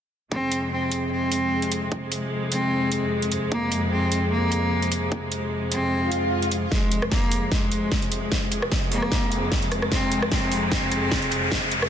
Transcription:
0.32 F2 C3 G#3 C4, kick
0.52 closed hi-hat
0.72 C4
0.92 closed hi-hat
1.12 C4
1.32 closed hi-hat
1.62 closed hi-hat
1.72 closed hi-hat
1.92 kick
2.12 closed hi-hat
2.52 C4, closed hi-hat
2.92 closed hi-hat
3.22 closed hi-hat
3.32 closed hi-hat
3.52 A#3, kick
3.72 closed hi-hat
3.92 C4
4.12 closed hi-hat
4.32 A#3
4.52 closed hi-hat
4.82 closed hi-hat
4.92 closed hi-hat
5.12 kick
5.32 closed hi-hat
5.72 C4, closed hi-hat
5.92 swell
6.12 closed hi-hat
6.42 closed hi-hat
6.52 closed hi-hat
6.72 F2 C3 G#3, kick, snare, riser
6.92 closed hi-hat
7.02 cross-stick
7.12 A#3, kick, snare
7.32 open hi-hat
7.52 G#3, kick, snare
7.72 closed hi-hat
7.92 kick, snare
8.02 closed hi-hat
8.12 closed hi-hat
8.32 kick, snare
8.52 closed hi-hat
8.62 cross-stick
8.72 kick, snare
8.92 A#3, open hi-hat
9.02 cross-stick
9.12 kick, snare
9.32 closed hi-hat
9.52 kick, snare
9.62 closed hi-hat
9.72 cross-stick, closed hi-hat
9.82 cross-stick
9.92 C4, kick, snare
10.12 closed hi-hat
10.22 cross-stick
10.32 C4, kick, snare
10.52 open hi-hat
10.72 C4, kick, snare
10.92 closed hi-hat
11.12 kick, snare
11.22 closed hi-hat
11.32 closed hi-hat
11.52 kick, snare
11.72 closed hi-hat
11.82 cross-stick

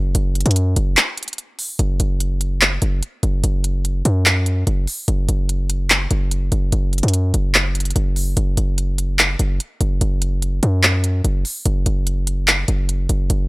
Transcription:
Already playing: F#1
0.15 F#1, closed hi-hat
0.35 closed hi-hat
0.41 closed hi-hat
0.46 F#2, closed hi-hat
0.51 closed hi-hat
0.56 closed hi-hat
0.76 F#1, closed hi-hat
0.97 clap, closed hi-hat
1.18 closed hi-hat
1.23 closed hi-hat
1.28 closed hi-hat
1.33 closed hi-hat
1.38 closed hi-hat
1.59 open hi-hat
1.79 F#1, closed hi-hat
2.00 F#1, closed hi-hat
2.20 closed hi-hat
2.41 closed hi-hat
2.61 clap, closed hi-hat
2.82 F#1, closed hi-hat
3.03 closed hi-hat
3.23 F#1, closed hi-hat
3.44 F#1, closed hi-hat
3.64 closed hi-hat
3.85 closed hi-hat
4.05 F#2, closed hi-hat
4.26 clap, closed hi-hat
4.46 closed hi-hat
4.67 F#1, closed hi-hat
4.87 open hi-hat
5.08 F#1, closed hi-hat
5.29 F#1, closed hi-hat
5.49 closed hi-hat
5.70 closed hi-hat
5.90 clap, closed hi-hat
6.11 F#1, closed hi-hat
6.31 closed hi-hat
6.52 F#1, closed hi-hat
6.72 F#1, closed hi-hat
6.93 closed hi-hat
6.98 closed hi-hat
7.03 F#2, closed hi-hat
7.08 closed hi-hat
7.14 closed hi-hat
7.34 F#1, closed hi-hat
7.55 clap, closed hi-hat
7.75 closed hi-hat
7.80 closed hi-hat
7.85 closed hi-hat
7.91 closed hi-hat
7.96 F#1, closed hi-hat
8.16 open hi-hat
8.37 F#1, closed hi-hat
8.57 F#1, closed hi-hat
8.78 closed hi-hat
8.98 closed hi-hat
9.19 clap, closed hi-hat
9.39 F#1, closed hi-hat
9.60 closed hi-hat
9.81 F#1, closed hi-hat
10.01 F#1, closed hi-hat
10.22 closed hi-hat
10.42 closed hi-hat
10.63 F#2, closed hi-hat
10.83 clap, closed hi-hat
11.04 closed hi-hat
11.24 F#1, closed hi-hat
11.45 open hi-hat
11.66 F#1, closed hi-hat
11.86 F#1, closed hi-hat
12.07 closed hi-hat
12.27 closed hi-hat
12.48 clap, closed hi-hat
12.68 F#1, closed hi-hat
12.89 closed hi-hat
13.09 F#1, closed hi-hat
13.30 F#1, closed hi-hat

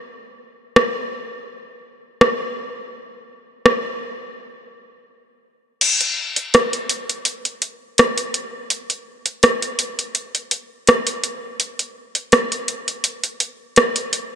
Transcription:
0.76 cross-stick
2.21 cross-stick
3.66 cross-stick
5.81 closed hi-hat, crash
6.01 closed hi-hat
6.36 closed hi-hat
6.54 cross-stick, closed hi-hat
6.73 closed hi-hat
6.89 closed hi-hat
7.09 closed hi-hat
7.25 closed hi-hat
7.45 closed hi-hat
7.62 closed hi-hat
7.98 cross-stick, closed hi-hat
8.18 closed hi-hat
8.34 closed hi-hat
8.70 closed hi-hat
8.90 closed hi-hat
9.26 closed hi-hat
9.43 cross-stick, closed hi-hat
9.62 closed hi-hat
9.79 closed hi-hat
9.99 closed hi-hat
10.15 closed hi-hat
10.35 closed hi-hat
10.51 closed hi-hat
10.87 cross-stick, closed hi-hat
11.07 closed hi-hat
11.24 closed hi-hat
11.60 closed hi-hat
11.79 closed hi-hat
12.15 closed hi-hat
12.32 cross-stick, closed hi-hat
12.52 closed hi-hat
12.68 closed hi-hat
12.88 closed hi-hat
13.04 closed hi-hat
13.24 closed hi-hat
13.40 closed hi-hat
13.76 cross-stick, closed hi-hat
13.96 closed hi-hat
14.13 closed hi-hat

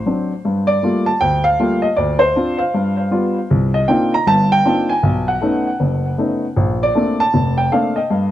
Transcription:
Already playing: C5
0.06 F#3 C4 D4
0.45 G2
0.67 D5
0.83 G3 A3 A#3 F4
1.06 A5
1.21 D2 G5
1.44 F5
1.59 G3 A3 A#3 F4
1.82 D#5
1.96 D2 D5
2.19 C5
2.36 C4 D4 F4
2.59 F5
2.74 G2
3.11 G3 B3 F4
3.51 C2
3.74 D#5
3.88 A#3 C4 D4 D#4 F4 G5
4.14 A#5
4.27 G1 G2 A5
4.52 G5
4.65 A#3 C4 D4 D#4 F4
4.89 G#5
5.03 B1
5.28 F#5
5.41 A3 B3 C#4 D#4
5.80 F#1
6.18 A3 B3 C#4 D#4
6.57 A#1
6.83 D5
6.95 A3 A#3 C4 D4
7.20 A5
7.34 F1
7.58 G5
7.72 A3 A#3 C4 D4 F5
7.96 D#5
8.10 G2

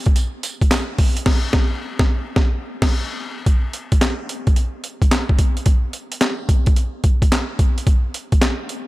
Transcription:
0.06 kick, closed hi-hat
0.16 closed hi-hat, tambourine
0.43 closed hi-hat, tambourine
0.61 kick, closed hi-hat
0.71 snare, clap, closed hi-hat, tambourine
0.98 kick, open hi-hat
1.17 closed hi-hat
1.26 kick, snare, crash
1.53 kick, snare
1.99 kick, snare
2.36 kick, snare
2.82 kick, snare, crash
3.46 kick, closed hi-hat
3.73 closed hi-hat
3.92 kick, closed hi-hat
4.01 snare, clap, closed hi-hat
4.29 closed hi-hat
4.47 kick, closed hi-hat
4.56 closed hi-hat
4.84 closed hi-hat
5.02 kick, closed hi-hat
5.11 snare, clap, closed hi-hat
5.29 kick
5.39 kick, closed hi-hat
5.57 closed hi-hat
5.66 kick, closed hi-hat
5.93 closed hi-hat
6.12 closed hi-hat
6.21 snare, clap, closed hi-hat
6.49 kick, closed hi-hat
6.66 kick, closed hi-hat
6.76 closed hi-hat
7.04 kick, closed hi-hat
7.22 kick, closed hi-hat
7.32 snare, clap, closed hi-hat
7.59 kick, closed hi-hat
7.78 closed hi-hat
7.87 kick, closed hi-hat
8.14 closed hi-hat
8.32 kick, closed hi-hat
8.42 snare, clap, closed hi-hat
8.69 closed hi-hat

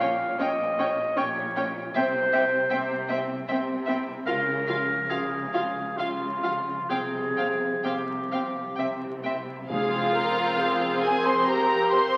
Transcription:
Already playing: A#1 A#2 C#4 F4 A#4 C#5 F5
0.00 G3 C#5 G5
0.39 A#1 A#2 C#4 G4 C#5 D#5 G5
0.78 C#4 C#5 G5
1.17 A#1 A#2 C#4 G4 C#5 G5
1.56 C#4 C#5 G5
1.94 C2 C3 C4 C5 E5 G5
2.33 C4 E5 G5
2.70 C2 C3 C4 G4 C5 E5 G5
3.09 C4 E5 G5
3.48 C2 C3 C4 C5 E5 G5
3.86 C4 E4 E5 G5
4.26 C#2 C#3 F4 A#4 F5
4.67 F3 F4 F5
5.09 C#2 C#3 F4 G#4 F5
5.54 F4 F5
5.97 C#2 C#3 F4 F5
6.43 F3 F4 F5
6.90 C2 C3 C4 G#4 F5 G5
7.37 F3 C4 F5 G5
7.84 C2 C3 C4 G4 C5 F5 G5
8.32 C4 F5 G5
8.77 C2 C3 C4 E5 G5
9.23 C4 E4 C5 E5 G5
9.70 F1 F2 C4 F4 G#4 F5
10.14 G#3 A#4 C5
10.58 G#4 A#4 C5
11.03 G#4 G#5
11.25 C5 C6
11.46 G4 A#4 F5 A#5
11.91 C5 C6

